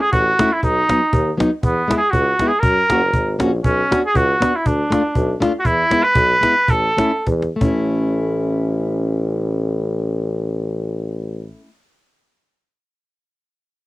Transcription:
0.01 0.12 G#4 medium
0.12 0.30 A1 medium
0.12 0.55 F#4 medium
0.12 cajon bass medium
0.39 0.50 A3 medium
0.39 0.50 C#4 soft
0.39 0.51 E4 medium
0.39 cajon slap medium
0.53 0.63 E4 medium
0.63 0.80 B1 medium
0.63 1.36 D#4 medium
0.63 cajon bass medium
0.89 1.00 F#3 medium
0.89 1.00 B3 medium
0.89 1.01 D#4 medium
0.89 cajon slap medium
1.13 1.30 D#2 loud
1.13 cajon bass medium
1.38 1.49 F#3 medium
1.38 1.49 B3 medium
1.38 1.50 D#4 medium
1.38 cajon slap medium
1.63 1.80 E2 medium
1.63 1.97 B3 medium
1.63 cajon bass medium
1.88 1.99 G#3 medium
1.88 1.99 B3 medium
1.88 2.00 E4 medium
1.88 cajon slap medium
1.98 2.12 G#4 medium
2.11 2.30 C#2 medium
2.11 2.49 F#4 medium
2.11 cajon bass medium
2.39 2.50 G#3 medium
2.39 2.51 B3 medium
2.39 2.51 E4 medium
2.39 cajon slap medium
2.48 2.61 G#4 medium
2.60 2.80 F#2 medium
2.60 3.39 A#4 loud
2.60 cajon bass medium
2.89 3.10 F#1 medium
2.89 3.00 A#3 medium
2.89 3.01 C#4 soft
2.89 3.01 F#4 medium
2.89 cajon slap medium
3.13 3.37 G#1 medium
3.13 cajon bass medium
3.39 3.62 A#1 medium
3.39 3.50 A#3 medium
3.39 3.50 C#4 medium
3.39 3.51 F#4 medium
3.39 cajon slap medium
3.64 3.82 B1 medium
3.64 4.00 C#4 medium
3.64 cajon bass medium
3.91 4.01 B3 medium
3.91 4.02 D4 medium
3.91 4.02 F#4 medium
3.91 cajon slap medium
4.06 4.18 G#4 medium
4.15 4.33 C#2 loud
4.15 4.57 F#4 medium
4.15 cajon bass medium
4.40 4.51 B3 medium
4.40 4.52 D4 soft
4.40 4.52 F#4 medium
4.40 cajon slap medium
4.56 4.68 E4 medium
4.65 4.82 D2 medium
4.65 5.41 D4 medium
4.65 cajon bass medium
4.90 5.01 A3 medium
4.90 5.02 D4 medium
4.90 5.02 F4 medium
4.90 cajon slap medium
5.15 5.32 B1 loud
5.15 cajon bass medium
5.40 5.51 A3 medium
5.40 5.51 D4 medium
5.40 5.52 F4 medium
5.40 cajon slap medium
5.60 5.67 F#4 medium
5.65 5.82 E2 medium
5.65 6.05 E4 loud
5.65 cajon bass medium
5.90 6.01 G#3 medium
5.90 6.02 B3 medium
5.90 6.02 E4 medium
5.90 cajon slap medium
6.03 6.72 B4 loud
6.15 6.33 B1 loud
6.15 cajon bass medium
6.41 6.53 G#3 medium
6.41 6.54 B3 medium
6.41 6.54 E4 medium
6.41 cajon slap medium
6.68 6.88 A1 medium
6.68 7.28 A4 medium
6.68 cajon bass medium
6.97 7.10 A3 soft
6.97 7.11 C#4 medium
6.97 7.11 E4 medium
6.97 cajon slap medium
7.26 7.49 E2 medium
7.26 cajon bass medium
7.26 cajon slap soft
7.42 cajon slap soft
7.56 11.61 A3 soft
7.61 11.49 A1 medium
7.61 11.66 C#4 medium
7.61 11.69 E4 medium
7.61 cajon bass medium

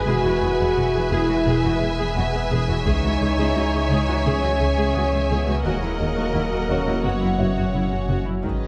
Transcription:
0.00 2.85 G#3 medium
0.00 0.72 D#4 soft
0.00 1.42 G#4 soft
0.00 2.84 G#4 medium
0.00 2.81 B4 medium
0.00 2.85 B4 medium
0.00 1.42 G#5 soft
0.00 2.82 G#5 medium
0.00 0.72 D#6 soft
0.06 0.13 E1 medium
0.06 2.87 E1 medium
0.06 0.14 E2 medium
0.06 5.65 E3 medium
0.06 1.09 F#4 loud
0.06 0.23 G#4 medium
0.06 5.61 E5 medium
0.24 0.32 E2 soft
0.24 0.31 F#4 medium
0.41 0.48 E1 soft
0.41 0.49 E2 medium
0.41 0.48 G#4 soft
0.59 0.66 E2 medium
0.59 0.75 G#4 medium
0.76 0.83 E1 soft
0.76 0.84 E2 soft
0.76 0.83 F#4 soft
0.94 1.02 E2 medium
0.94 1.01 G#4 soft
1.11 1.19 E1 medium
1.11 1.19 E2 medium
1.11 2.16 E4 medium
1.11 1.27 G#4 medium
1.29 1.36 E2 medium
1.29 1.36 F#4 soft
1.46 1.53 E1 medium
1.46 1.53 E2 medium
1.46 1.62 G#4 medium
1.64 1.71 E2 soft
1.64 1.71 F#4 soft
1.81 1.88 E1 soft
1.81 1.88 E2 soft
1.81 1.88 G#4 soft
1.98 2.06 E2 medium
1.98 2.15 G#4 medium
2.16 2.23 E1 soft
2.16 2.23 E2 soft
2.16 2.23 F#4 medium
2.16 4.21 F#5 medium
2.34 2.41 E2 soft
2.34 2.41 G#4 medium
2.50 2.57 E1 medium
2.50 2.58 E2 medium
2.50 2.67 G#4 medium
2.68 2.75 E2 soft
2.68 2.75 F#4 soft
2.85 2.92 C#2 medium
2.85 5.66 C#2 medium
2.85 2.93 C#2 medium
2.85 5.61 G#3 medium
2.85 4.21 D#4 loud
2.85 3.01 G#4 medium
2.85 5.61 G#4 medium
2.85 5.60 C#5 medium
2.85 5.65 C#5 medium
2.85 5.60 G#5 medium
2.85 taiko medium
3.03 3.10 C#2 soft
3.03 3.10 F#4 soft
3.20 3.27 C#2 soft
3.20 3.28 C#2 soft
3.20 3.27 G#4 soft
3.38 3.45 C#2 medium
3.38 3.54 G#4 medium
3.55 3.62 C#2 soft
3.55 3.63 C#2 soft
3.55 3.62 F#4 soft
3.73 3.80 C#2 soft
3.73 3.80 G#4 soft
3.90 3.97 C#2 medium
3.90 3.98 C#2 medium
3.90 4.06 G#4 medium
4.08 4.15 C#2 soft
4.08 4.15 F#4 soft
4.24 4.32 C#2 medium
4.24 5.29 C#4 medium
4.24 4.41 G#4 medium
4.43 4.50 C#2 soft
4.43 4.50 F#4 soft
4.60 4.67 C#2 soft
4.60 4.67 G#4 soft
4.77 4.84 C#2 medium
4.77 4.94 G#4 medium
4.94 5.01 C#2 soft
4.94 5.02 C#2 soft
4.94 5.02 F#4 soft
4.94 7.00 D#6 soft
5.12 5.19 C#2 soft
5.12 5.20 G#4 soft
5.29 5.36 C#2 medium
5.29 5.37 C#2 medium
5.29 5.64 B3 medium
5.29 5.46 G#4 medium
5.47 5.54 C#2 soft
5.47 5.54 F#4 soft
5.64 7.06 D#1 medium
5.64 5.71 D#2 medium
5.64 8.44 F#3 medium
5.64 7.04 A#3 medium
5.64 5.81 F#4 medium
5.64 8.44 F#4 medium
5.64 7.01 A#4 soft
5.64 7.04 D#5 medium
5.64 7.02 D#5 soft
5.64 8.20 F#5 soft
5.82 5.89 D#2 soft
5.82 5.89 E4 soft
5.98 6.06 D#2 soft
5.98 6.06 F#4 soft
6.16 6.23 D#2 medium
6.16 6.33 F#4 medium
6.34 6.41 D#2 soft
6.34 6.41 E4 soft
6.51 6.58 D#2 soft
6.51 6.59 F#4 soft
6.69 6.76 D#2 soft
6.69 8.40 C#4 soft
6.69 6.85 F#4 soft
6.69 8.40 C#5 soft
6.86 6.93 D#2 soft
6.86 6.94 E4 soft
7.03 7.11 F#1 soft
7.03 8.44 F#1 medium
7.03 7.11 F#2 medium
7.03 7.74 B3 medium
7.03 8.43 C#4 medium
7.03 7.20 F#4 soft
7.03 8.43 C#5 medium
7.03 8.21 C#5 soft
7.21 7.28 F#2 soft
7.21 7.28 E4 soft
7.38 7.46 F#1 soft
7.38 7.46 F#2 soft
7.38 8.39 E4 soft
7.38 7.46 F#4 soft
7.38 8.39 E5 soft
7.56 7.63 F#2 soft
7.56 7.72 F#4 soft
7.74 7.81 F#1 soft
7.74 7.81 F#2 soft
7.74 7.81 E4 soft
7.91 7.98 F#2 soft
7.91 7.99 F#4 soft
8.09 8.16 F#1 medium
8.09 8.16 F#2 soft
8.09 8.25 F#4 soft
8.26 8.33 F#2 soft
8.26 8.33 E4 soft
8.43 8.67 G#1 medium
8.43 8.50 G#2 soft
8.43 8.67 D#3 soft
8.43 8.60 D#3 soft
8.43 8.67 G#3 medium
8.43 8.67 G#4 soft
8.43 8.67 G#4 medium
8.43 8.67 B4 soft
8.43 8.67 B4 medium
8.43 8.67 D#5 soft
8.43 taiko soft

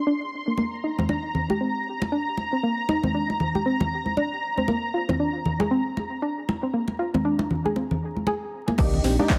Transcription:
0.00 0.59 C6 medium
0.07 0.13 D4 loud
0.47 0.54 A#3 medium
0.57 0.67 A#3 medium
0.57 8.80 A#5 medium
0.57 muted conga soft
0.84 0.93 D#4 medium
0.99 1.01 C4 medium
0.99 high conga medium
0.99 low conga medium
1.09 1.19 D4 medium
1.09 muted conga medium
1.35 low conga medium
1.50 1.53 G4 medium
1.50 muted conga soft
1.50 high conga medium
1.61 1.70 C4 medium
2.02 muted conga medium
2.12 2.16 D4 loud
2.37 muted conga soft
2.53 2.55 C4 medium
2.63 2.73 A#3 medium
2.89 2.98 D#4 medium
2.89 muted conga medium
3.04 3.07 C4 medium
3.04 high conga medium
3.04 low conga medium
3.14 3.24 D4 medium
3.30 muted conga soft
3.40 low conga medium
3.55 3.58 G4 medium
3.55 high conga medium
3.66 3.75 C4 medium
3.80 muted conga medium
3.80 low conga medium
4.06 high conga medium
4.17 4.21 D4 medium
4.17 muted conga soft
4.57 4.60 C4 medium
4.57 high conga medium
4.68 4.78 A#3 medium
4.68 muted conga medium
4.94 5.03 F4 medium
5.09 5.12 C4 medium
5.09 muted conga soft
5.09 high conga medium
5.09 low conga medium
5.20 5.29 D4 medium
5.45 low conga medium
5.60 5.63 G#4 medium
5.60 muted conga medium
5.60 high conga medium
5.71 5.80 C4 medium
5.97 muted conga medium
6.22 6.26 D4 medium
6.49 muted conga medium
6.63 6.66 C4 medium
6.73 6.83 A#3 medium
6.88 muted conga soft
6.99 7.08 F4 medium
7.14 7.17 C4 medium
7.14 high conga medium
7.14 low conga medium
7.25 7.34 D4 medium
7.39 muted conga medium
7.50 low conga medium
7.65 7.68 G#4 medium
7.65 high conga medium
7.76 7.85 C4 medium
7.76 muted conga soft
7.91 low conga medium
8.16 high conga soft
8.27 8.31 G#4 loud
8.27 muted conga medium
8.68 8.72 A#3 medium
8.68 muted conga medium
8.68 high conga medium
8.78 9.00 C2 loud
8.78 9.16 A#3 medium
8.78 8.82 A#3 loud
8.78 9.16 D4 medium
8.78 9.16 D#4 medium
8.78 9.16 G4 loud
8.78 kick loud
8.78 closed hi-hat medium
8.78 crash loud
8.78 muted conga medium
8.94 low conga loud
9.04 9.17 A#1 loud
9.04 9.08 C4 medium
9.04 snare soft
9.04 closed hi-hat medium
9.04 open hi-hat loud
9.19 9.35 A#3 medium
9.19 9.35 D4 medium
9.19 9.22 D4 loud
9.19 9.35 D#4 medium
9.19 9.35 G4 medium
9.19 high conga medium
9.30 kick loud
9.30 snare loud
9.30 clap loud
9.30 closed hi-hat medium
9.30 muted conga medium

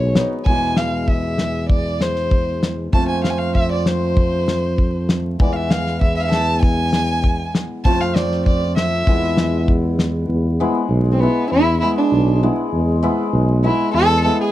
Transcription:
0.00 0.21 B1 medium
0.00 0.16 C#5 medium
0.15 0.51 F#3 medium
0.15 0.31 B3 medium
0.15 0.32 D#4 medium
0.15 snare medium
0.46 2.89 E2 medium
0.46 2.98 B2 soft
0.46 2.98 E3 medium
0.46 2.98 G#3 medium
0.46 0.79 G#5 medium
0.46 kick medium
0.77 1.11 F5 medium
0.77 snare medium
1.08 1.69 E5 medium
1.08 kick soft
1.38 snare medium
1.69 2.03 D5 medium
1.69 kick medium
2.01 2.62 C5 medium
2.01 snare medium
2.16 snare soft
2.31 kick medium
2.63 snare medium
2.93 5.35 F2 medium
2.93 5.46 A3 medium
2.93 5.46 C4 medium
2.93 5.47 F4 medium
2.93 3.08 A5 medium
2.93 kick medium
3.09 3.23 G#5 medium
3.24 3.32 F5 medium
3.24 snare medium
3.30 3.40 G#5 medium
3.39 3.55 F5 medium
3.55 3.69 E5 medium
3.55 kick soft
3.72 3.88 D5 medium
3.86 5.09 C5 medium
3.86 snare medium
4.17 kick medium
4.48 snare medium
4.78 kick medium
5.09 snare medium
5.40 7.68 E2 medium
5.40 7.90 E3 medium
5.40 7.90 G#3 medium
5.40 7.91 B3 medium
5.40 5.54 D5 medium
5.40 kick medium
5.53 5.72 E5 medium
5.53 5.58 F5 soft
5.70 6.01 F5 medium
5.70 snare medium
5.86 snare soft
6.01 6.16 E5 medium
6.01 kick medium
6.17 6.21 E5 medium
6.17 6.26 F5 medium
6.25 6.33 E5 medium
6.32 6.61 A5 medium
6.32 snare medium
6.62 7.50 G#5 medium
6.62 kick medium
6.93 snare medium
7.24 kick medium
7.55 snare medium
7.85 9.05 F2 medium
7.85 9.14 A3 medium
7.85 9.14 C4 medium
7.85 9.15 F4 medium
7.85 8.02 A5 medium
7.85 kick medium
8.01 8.17 F5 medium
8.16 8.46 D5 medium
8.16 snare medium
8.32 snare soft
8.46 8.75 D5 medium
8.46 kick medium
8.76 9.64 E5 medium
8.76 snare medium
9.07 10.27 E2 medium
9.07 10.34 G#3 medium
9.07 10.60 B3 medium
9.07 10.61 E4 medium
9.07 kick medium
9.37 snare medium
9.68 kick medium
9.99 snare medium
10.28 10.65 E2 medium
10.60 11.21 G#3 medium
10.60 10.75 B3 medium
10.60 10.76 E4 medium
10.89 11.26 B1 loud
11.12 11.22 C4 medium
11.20 11.81 G#3 soft
11.20 11.50 B3 medium
11.20 11.37 B3 medium
11.20 11.37 E4 medium
11.50 11.88 E2 medium
11.50 11.79 E4 loud
11.80 12.42 G#3 medium
11.80 11.97 B3 medium
11.80 11.95 E4 medium
11.80 11.97 E4 medium
11.98 12.40 D4 medium
12.12 12.48 B1 loud
12.43 13.01 G#3 medium
12.43 12.58 B3 medium
12.43 12.58 E4 medium
12.72 13.09 E2 medium
13.03 13.63 G#3 medium
13.03 13.19 B3 medium
13.03 13.18 E4 medium
13.33 13.70 B1 loud
13.64 14.24 G#3 medium
13.64 13.79 B3 medium
13.64 13.92 E4 medium
13.64 13.79 E4 medium
13.93 14.30 E2 medium
13.93 14.22 A4 loud
14.25 14.52 G#3 medium
14.25 14.40 B3 medium
14.25 14.40 E4 medium
14.25 14.39 A4 medium
14.41 14.52 G#4 medium

